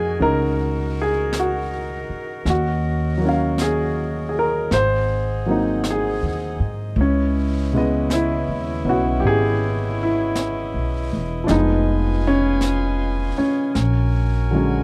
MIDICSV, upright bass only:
0, 0, Header, 1, 3, 480
1, 0, Start_track
1, 0, Tempo, 1127820
1, 1050, Time_signature, 4, 2, 24, 8
1, 6313, End_track
2, 0, Start_track
2, 0, Title_t, "Upright bass"
2, 0, Program_c, 0, 32
2, 0, Note_on_c, 0, 41, 51
2, 76, Note_off_c, 0, 41, 0
2, 87, Note_on_c, 0, 37, 60
2, 876, Note_off_c, 0, 37, 0
2, 1044, Note_on_c, 0, 39, 72
2, 1990, Note_off_c, 0, 39, 0
2, 2005, Note_on_c, 0, 32, 68
2, 2630, Note_off_c, 0, 32, 0
2, 2649, Note_on_c, 0, 39, 51
2, 2797, Note_off_c, 0, 39, 0
2, 2808, Note_on_c, 0, 44, 55
2, 2957, Note_off_c, 0, 44, 0
2, 2962, Note_on_c, 0, 37, 78
2, 3588, Note_off_c, 0, 37, 0
2, 3610, Note_on_c, 0, 39, 49
2, 3758, Note_off_c, 0, 39, 0
2, 3765, Note_on_c, 0, 35, 57
2, 3916, Note_off_c, 0, 35, 0
2, 3923, Note_on_c, 0, 32, 65
2, 4549, Note_off_c, 0, 32, 0
2, 4571, Note_on_c, 0, 35, 50
2, 4718, Note_off_c, 0, 35, 0
2, 4735, Note_on_c, 0, 28, 56
2, 4881, Note_off_c, 0, 28, 0
2, 4893, Note_on_c, 0, 29, 78
2, 5678, Note_off_c, 0, 29, 0
2, 5854, Note_on_c, 0, 34, 67
2, 6313, Note_off_c, 0, 34, 0
2, 6313, End_track
3, 0, Start_track
3, 0, Title_t, "Muted upright bass strokes"
3, 891, Note_on_c, 9, 29, 33
3, 933, Note_off_c, 9, 29, 0
3, 5697, Note_on_c, 9, 29, 33
3, 5740, Note_off_c, 9, 29, 0
3, 6313, End_track
0, 0, End_of_file